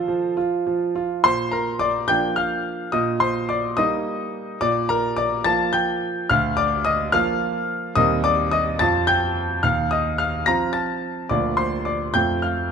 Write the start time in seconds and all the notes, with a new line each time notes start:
Already playing: F3 F4 A4 C5
0.08 F3
0.37 F4
0.67 F3
0.95 F4
1.24 A#2 C5 C6
1.51 A#4 A#5
1.79 D5 D6
2.08 F3 A#3 D4 G5 G6
2.36 F5 F6
2.92 A#2 D#5 D#6
3.20 C5 C6
3.49 D5 D6
3.77 G3 A#3 D#4 D#5 D#6
4.61 A#2 D5 D6
4.89 A#4 A#5
5.16 D5 D6
5.44 F3 A#3 F4 A5 A6
5.73 G5 G6
6.29 D2 F5 F6
6.57 D5 D6
6.85 D#5 D#6
7.12 F3 A#3 F4 F5 F6
7.95 D#2 G3 C4 A#4 D#5 D#6
8.24 D5 D6
8.51 D#5 D#6
8.79 F2 F3 C4 F4 A5 A6
9.07 G5 G6
9.63 D#2 F5 F6
9.91 D#5 D#6
10.18 F5 F6
10.46 F3 C4 F4 A#5 A#6
10.73 A5 A6
11.29 D2 F3 A#3 F4 D5 D6
11.57 C5 C6
11.85 D5 D6
12.14 F2 F3 A3 F4 G5 G6
12.42 F5 F6